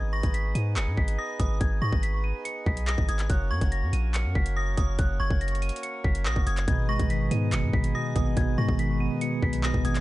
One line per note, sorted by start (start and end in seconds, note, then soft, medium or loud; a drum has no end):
0.00 0.22 G#1 loud
0.00 3.26 B3 medium
0.00 3.26 D#4 medium
0.00 3.26 G#4 medium
0.00 3.26 D#5 medium
0.13 0.33 C#6 loud
0.13 0.30 A#6 medium
0.23 0.54 G#1 loud
0.23 kick loud
0.23 closed hi-hat medium
0.34 0.52 B6 medium
0.34 closed hi-hat medium
0.55 0.78 G#2 loud
0.55 0.73 D#7 medium
0.55 closed hi-hat medium
0.76 0.88 F#1 loud
0.76 0.94 C#7 medium
0.76 clap loud
0.76 closed hi-hat medium
0.87 0.97 G#2 loud
0.97 1.18 G#1 loud
0.97 1.15 B6 medium
0.97 kick loud
1.08 closed hi-hat medium
1.18 1.38 D#6 medium
1.18 1.36 A#6 medium
1.40 1.60 G#1 loud
1.40 1.60 D#6 medium
1.40 kick loud
1.40 closed hi-hat medium
1.61 1.81 G#1 loud
1.61 1.78 G#6 medium
1.61 kick loud
1.61 closed hi-hat medium
1.82 1.92 G#2 loud
1.82 2.02 C#6 medium
1.82 1.99 A#6 medium
1.92 2.33 G#1 loud
1.92 kick loud
2.03 2.21 B6 medium
2.03 closed hi-hat medium
2.24 2.42 D#7 medium
2.45 2.63 C#7 loud
2.45 closed hi-hat medium
2.66 2.97 B1 loud
2.66 2.84 B6 medium
2.66 kick loud
2.77 closed hi-hat medium
2.87 3.07 D#6 medium
2.87 3.05 A#6 medium
2.87 clap loud
2.98 3.08 G#1 loud
2.98 kick medium
3.08 3.29 G#1 loud
3.08 3.29 D#6 medium
3.08 3.26 G#6 medium
3.08 closed hi-hat medium
3.19 clap medium
3.19 closed hi-hat medium
3.30 3.52 F#1 loud
3.30 6.64 A#3 medium
3.30 6.64 C#4 medium
3.30 6.64 F#4 medium
3.30 6.64 C#5 medium
3.30 3.47 F#6 medium
3.30 kick loud
3.30 closed hi-hat loud
3.51 3.61 F#2 loud
3.51 3.71 C#6 loud
3.51 3.69 G#6 medium
3.61 3.84 F#1 loud
3.61 kick loud
3.61 closed hi-hat medium
3.72 3.90 A#6 medium
3.72 closed hi-hat medium
3.82 3.93 F#2 loud
3.93 4.26 A#1 loud
3.93 4.11 D#7 medium
3.93 closed hi-hat medium
4.14 4.32 C#7 medium
4.14 clap loud
4.14 closed hi-hat medium
4.25 4.35 F#2 loud
4.35 4.76 F#1 loud
4.35 4.53 B6 medium
4.35 kick loud
4.46 closed hi-hat medium
4.56 4.76 D#6 medium
4.56 4.74 A#6 medium
4.77 4.98 F#1 loud
4.77 4.98 D#6 medium
4.77 kick loud
4.77 closed hi-hat medium
4.99 5.19 F#1 loud
4.99 5.16 F#6 medium
4.99 kick loud
4.99 closed hi-hat medium
5.20 5.30 F#1 loud
5.20 5.40 C#6 medium
5.20 5.38 G#6 medium
5.30 5.71 F#1 loud
5.30 kick loud
5.41 5.59 A#6 medium
5.41 closed hi-hat soft
5.48 closed hi-hat soft
5.55 closed hi-hat medium
5.62 5.80 D#7 medium
5.62 closed hi-hat medium
5.69 closed hi-hat medium
5.76 closed hi-hat medium
5.83 6.01 C#7 medium
5.83 closed hi-hat medium
6.04 6.27 F#1 loud
6.04 6.22 B6 medium
6.04 kick loud
6.15 closed hi-hat medium
6.26 6.36 A#1 loud
6.26 6.45 D#6 medium
6.26 6.43 A#6 medium
6.26 clap loud
6.36 6.46 F#1 loud
6.36 kick medium
6.47 6.67 F#1 loud
6.47 6.67 D#6 medium
6.47 6.64 G#6 medium
6.47 closed hi-hat medium
6.57 clap medium
6.57 closed hi-hat medium
6.68 6.98 G#1 loud
6.68 7.51 B2 loud
6.68 10.01 B3 medium
6.68 10.01 D#4 medium
6.68 10.01 G#4 medium
6.68 10.01 D#5 medium
6.68 6.85 G#6 medium
6.68 kick loud
6.68 closed hi-hat medium
6.89 7.94 G#3 medium
6.89 7.09 C#6 loud
6.89 7.07 A#6 medium
6.99 7.30 G#1 loud
6.99 kick loud
6.99 closed hi-hat medium
7.10 8.16 D#3 medium
7.10 7.28 B6 medium
7.10 closed hi-hat medium
7.31 7.54 G#2 loud
7.31 8.15 B3 medium
7.31 7.49 D#7 medium
7.31 closed hi-hat medium
7.52 7.64 F#1 loud
7.52 7.93 B2 medium
7.52 7.70 C#7 medium
7.52 clap loud
7.52 closed hi-hat medium
7.63 7.73 G#2 loud
7.73 7.94 G#1 loud
7.73 7.91 B6 medium
7.73 kick loud
7.84 closed hi-hat medium
7.94 8.36 B2 medium
7.94 8.14 D#6 medium
7.94 8.12 A#6 medium
8.16 8.36 G#1 loud
8.16 8.99 B3 medium
8.16 8.36 D#6 medium
8.16 kick loud
8.16 closed hi-hat medium
8.37 8.57 G#1 loud
8.37 9.20 B2 loud
8.37 8.55 G#6 medium
8.37 kick loud
8.37 closed hi-hat medium
8.58 8.68 G#2 loud
8.58 9.63 G#3 medium
8.58 8.78 C#6 medium
8.58 8.76 A#6 medium
8.68 9.09 G#1 loud
8.68 kick loud
8.79 9.85 D#3 medium
8.79 8.97 B6 medium
8.79 closed hi-hat medium
9.00 9.83 B3 medium
9.00 9.18 D#7 medium
9.21 9.63 B2 medium
9.21 9.39 C#7 loud
9.21 closed hi-hat medium
9.42 9.73 B1 loud
9.42 9.60 B6 medium
9.42 kick loud
9.53 closed hi-hat medium
9.63 10.01 B2 medium
9.63 9.84 D#6 medium
9.63 9.81 A#6 medium
9.63 clap loud
9.74 9.84 G#1 loud
9.74 kick medium
9.84 10.01 G#1 loud
9.84 10.01 B3 medium
9.84 10.01 D#6 medium
9.84 10.01 G#6 medium
9.84 closed hi-hat medium
9.95 clap medium
9.95 closed hi-hat medium